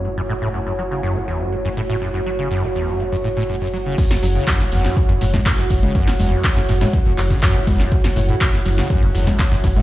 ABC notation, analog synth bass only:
X:1
M:4/4
L:1/16
Q:1/4=122
K:F#m
V:1 name="Analog synth bass" clef=bass
F,,,16- | F,,,16 | z2 F,,, z3 F,,, z2 F,,, F,,, z3 F,,, z | z2 F,,, z3 F,,, z2 F,,, F,,, z3 F,,, z |
z2 F,,, z3 F,,, z2 F,,, F,,, z3 F,,, z |]